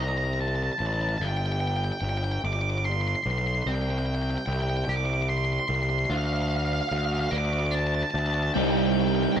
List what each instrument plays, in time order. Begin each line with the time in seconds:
0.00 picked electric bass C2, lead electric guitar A#5
0.09 lead electric guitar A#5
0.18 lead electric guitar A#5
0.25 lead electric guitar A#5
0.33 lead electric guitar A#5
0.41 lead electric guitar A5
0.48 lead electric guitar A5
0.56 lead electric guitar A5
0.63 lead electric guitar A5
0.73 lead electric guitar A5
0.79 picked electric bass A1, lead electric guitar A5
0.86 lead electric guitar A5
0.94 lead electric guitar A5
1.01 lead electric guitar A5
1.09 lead electric guitar A5
1.18 picked electric bass G1, lead electric guitar G5 A5
1.29 lead electric guitar G5
1.37 lead electric guitar G5
1.46 lead electric guitar G5
1.52 lead electric guitar G5
1.60 lead electric guitar G5
1.67 lead electric guitar G5
1.77 lead electric guitar G5
1.85 lead electric guitar G5
1.92 lead electric guitar G5
2.01 picked electric bass G1, lead electric guitar G5
2.09 lead electric guitar G5
2.17 lead electric guitar G5
2.24 lead electric guitar G5
2.32 lead electric guitar G5
2.44 picked electric bass G1, lead electric guitar D6
2.53 lead electric guitar D6
2.61 lead electric guitar D6
2.70 lead electric guitar D6
2.78 lead electric guitar D6
2.85 lead electric guitar C6
2.92 lead electric guitar C6
3.01 lead electric guitar C6
3.08 lead electric guitar C6
3.16 lead electric guitar C6
3.23 picked electric bass B1, lead electric guitar C6
3.31 lead electric guitar C6
3.38 lead electric guitar C6
3.47 lead electric guitar C6
3.55 lead electric guitar C6
3.63 picked electric bass C2, lead electric guitar C6
3.67 lead electric guitar G5
3.75 lead electric guitar G5
3.82 lead electric guitar G5
3.90 lead electric guitar G5
3.98 lead electric guitar G5
4.06 lead electric guitar G5
4.15 lead electric guitar G5
4.22 lead electric guitar G5
4.30 lead electric guitar G5
4.38 lead electric guitar G5
4.46 picked electric bass C2, lead electric guitar G5
4.53 lead electric guitar G5
4.62 lead electric guitar G5
4.69 lead electric guitar G5
4.77 lead electric guitar G5
4.85 picked electric bass C2, lead electric guitar G5
4.89 lead electric guitar D6
4.97 lead electric guitar D6
5.06 lead electric guitar D6
5.14 lead electric guitar D6
5.22 lead electric guitar D6
5.29 lead electric guitar C6
5.38 lead electric guitar C6
5.45 lead electric guitar C6
5.53 lead electric guitar C6
5.59 lead electric guitar C6
5.68 picked electric bass C2, lead electric guitar C6
5.75 lead electric guitar C6
5.83 lead electric guitar C6
5.90 lead electric guitar C6
5.99 lead electric guitar C6
6.05 lead electric guitar C6
6.10 picked electric bass D2, lead electric guitar F5
6.17 lead electric guitar F5
6.26 lead electric guitar F5
6.33 lead electric guitar F5
6.42 lead electric guitar F5
6.48 lead electric guitar F5
6.56 lead electric guitar F5
6.65 lead electric guitar F5
6.73 lead electric guitar F5
6.81 lead electric guitar F5
6.89 picked electric bass D2, lead electric guitar F5
6.98 lead electric guitar F5
7.05 lead electric guitar F5
7.13 lead electric guitar F5
7.21 lead electric guitar F5
7.28 picked electric bass D2, lead electric guitar F5 D6
7.38 lead electric guitar D6
7.45 lead electric guitar D6
7.53 lead electric guitar D6
7.59 lead electric guitar D6
7.67 lead electric guitar D6
7.71 lead electric guitar A5
7.79 lead electric guitar A5
7.87 lead electric guitar A5
7.95 lead electric guitar A5
8.03 lead electric guitar A5
8.11 picked electric bass D2, lead electric guitar A5
8.19 lead electric guitar A5
8.26 lead electric guitar A5
8.34 lead electric guitar A5
8.43 lead electric guitar A5
8.54 picked electric bass C2, overdriven electric guitar C3 G3 C4 D#4, lead electric guitar G5
8.62 lead electric guitar G5
8.70 lead electric guitar G5
8.77 lead electric guitar G5
8.86 lead electric guitar G5
8.92 lead electric guitar G5
9.00 lead electric guitar G5
9.08 lead electric guitar G5
9.15 lead electric guitar G5
9.23 lead electric guitar G5
9.32 lead electric guitar G5 A#5